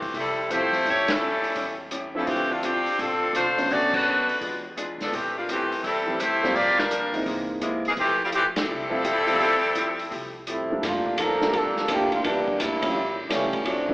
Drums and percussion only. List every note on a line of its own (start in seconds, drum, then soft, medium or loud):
0.02 kick medium
0.02 open hi-hat soft
0.14 kick soft
0.14 open hi-hat soft
0.51 closed hi-hat medium
0.74 open hi-hat soft
0.86 kick soft
0.86 open hi-hat soft
1.08 snare medium
1.08 ride medium
1.44 open hi-hat soft
1.55 kick soft
1.55 open hi-hat soft
1.91 closed hi-hat medium
2.27 kick soft
2.27 open hi-hat soft
2.63 closed hi-hat medium
2.86 open hi-hat soft
2.99 kick soft
2.99 open hi-hat soft
3.35 closed hi-hat medium
3.58 open hi-hat soft
3.70 kick soft
3.70 open hi-hat soft
3.94 kick medium
3.94 crash medium
4.29 open hi-hat soft
4.41 kick soft
4.41 open hi-hat soft
4.77 closed hi-hat medium
5.00 snare soft
5.00 open hi-hat soft
5.13 kick soft
5.13 open hi-hat soft
5.49 closed hi-hat medium
5.72 open hi-hat soft
5.84 kick soft
5.84 open hi-hat soft
6.20 closed hi-hat medium
6.44 snare soft
6.55 kick soft
6.55 open hi-hat soft
6.79 snare medium
6.91 closed hi-hat medium
7.14 open hi-hat soft
7.26 kick soft
7.26 open hi-hat soft
7.61 closed hi-hat medium
7.85 open hi-hat soft
7.97 kick soft
7.97 open hi-hat soft
8.32 closed hi-hat medium
8.56 snare medium
8.56 ride medium
9.05 closed hi-hat medium
9.27 open hi-hat soft
9.40 kick soft
9.40 open hi-hat soft
9.75 closed hi-hat medium
9.99 open hi-hat soft
10.12 kick soft
10.12 open hi-hat soft
10.47 closed hi-hat medium
10.83 kick soft
10.83 snare soft
10.83 ride medium
11.06 kick medium
11.18 kick soft
11.18 hi-hat pedal medium
11.18 ride medium
11.41 snare medium
11.53 kick soft
11.53 ride medium
11.77 snare soft
11.88 kick soft
11.88 hi-hat pedal medium
11.88 ride medium
12.12 ride soft
12.24 kick soft
12.24 ride medium
12.48 kick medium
12.60 kick soft
12.60 hi-hat pedal medium
12.60 ride medium
12.82 kick medium
12.82 ride medium
12.95 kick soft
13.30 kick soft
13.30 snare soft
13.30 hi-hat pedal medium
13.30 ride medium
13.53 kick medium
13.53 ride soft
13.65 kick soft
13.65 ride medium
13.89 kick medium